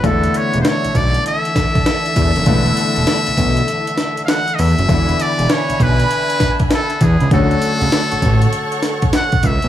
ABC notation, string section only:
X:1
M:4/4
L:1/8
Q:"Swing 16ths" 1/4=99
K:Emix
V:1 name="String section"
[E,DAe]8- | [E,DAe]8 | [Degb]8 | [Acfc']8 |]